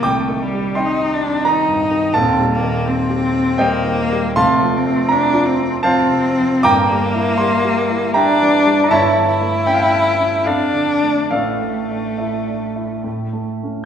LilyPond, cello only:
\new Staff \with { instrumentName = "Cello" } { \time 3/4 \key c \dorian \tempo 4 = 80 a8 g8 ees'8 d'8 ees'4 | c'8 bes8 c'4 bes4 | \key a \phrygian a8 c'8 d'8 c'8 c'4 | bes2 d'4 |
e'8 e'4. d'4 | a2~ a8 r8 | }